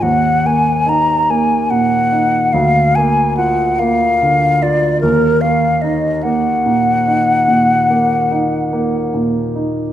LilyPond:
<<
  \new Staff \with { instrumentName = "Flute" } { \time 12/8 \key ees \dorian \tempo 4. = 48 ges''8 aes''8 bes''8 aes''8 ges''4 f''8 aes''8 ges''8 f''4 d''8 | bes'8 f''8 ees''8 ges''2.~ ges''8 r4 | }
  \new Staff \with { instrumentName = "Grand piano" } { \time 12/8 \key ees \dorian ees,8 bes8 ees'8 bes8 bes,8 ees'8 d,8 bes8 f'8 bes8 d8 f'8 | ees,8 bes8 ees'8 bes8 bes,8 ees'8 bes,8 bes8 ees'8 bes8 bes,8 ees'8 | }
>>